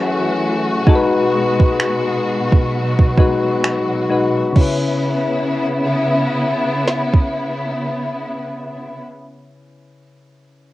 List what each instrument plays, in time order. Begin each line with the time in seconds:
Already playing: string section E3 A3 F#4, synth keys F#3 C#4 E4 G#4
0.87 string section B2 G#3, synth keys G#3 D#4 F#4 A4, kick
0.95 synth keys B4
1.60 kick
1.80 finger snap
2.52 kick
2.72 string section F#3
2.99 kick
3.17 synth keys G#3 D#4 F#4 B4, kick
3.64 finger snap
4.10 synth keys G#3 D#4 F#4 B4
4.52 synth keys C#3 C#4, string section C#3 B3 E4, kick, crash
4.58 synth keys E4 B4
6.88 snare
7.14 kick